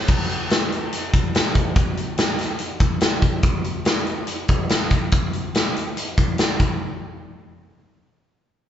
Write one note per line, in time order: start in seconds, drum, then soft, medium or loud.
0.08 kick loud
0.08 crash medium
0.30 closed hi-hat medium
0.50 snare loud
0.50 closed hi-hat medium
0.72 closed hi-hat medium
0.93 closed hi-hat medium
1.14 kick medium
1.14 closed hi-hat medium
1.35 snare loud
1.35 closed hi-hat medium
1.55 kick medium
1.55 closed hi-hat medium
1.76 kick loud
1.76 closed hi-hat medium
1.97 closed hi-hat medium
2.18 snare loud
2.18 closed hi-hat medium
2.38 snare soft
2.38 closed hi-hat medium
2.59 closed hi-hat medium
2.80 kick medium
2.80 closed hi-hat medium
3.01 snare loud
3.01 closed hi-hat medium
3.22 kick medium
3.22 closed hi-hat medium
3.43 kick loud
3.43 closed hi-hat medium
3.64 closed hi-hat medium
3.85 snare loud
3.85 closed hi-hat medium
4.07 closed hi-hat soft
4.27 closed hi-hat medium
4.48 kick medium
4.48 closed hi-hat medium
4.69 snare medium
4.69 closed hi-hat medium
4.90 kick medium
4.90 closed hi-hat medium
5.12 kick loud
5.12 closed hi-hat medium
5.33 closed hi-hat medium
5.55 snare loud
5.55 closed hi-hat medium
5.77 closed hi-hat medium
5.97 closed hi-hat medium
6.17 kick medium
6.17 closed hi-hat medium
6.38 snare medium
6.38 closed hi-hat medium
6.60 kick medium
6.60 closed hi-hat medium